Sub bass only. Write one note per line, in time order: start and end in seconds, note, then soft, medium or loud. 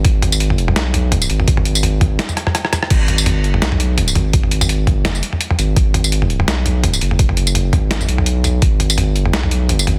0.05 0.75 G#1 loud
0.76 1.29 B1 loud
1.30 2.00 G#1 loud
2.01 2.19 G#1 loud
2.91 3.41 G#1 medium
3.41 3.61 G1 medium
3.62 4.14 B1 loud
4.16 4.91 G#1 loud
4.91 5.21 G1 loud
5.59 5.75 G#1 loud
5.76 6.47 G#1 loud
6.48 7.00 B1 loud
7.02 7.72 F#1 loud
7.73 8.07 G#1 loud
8.08 8.61 B1 loud
8.62 9.12 G#1 loud
9.12 9.32 G1 loud
9.34 9.86 B1 loud
9.87 9.99 G#1 loud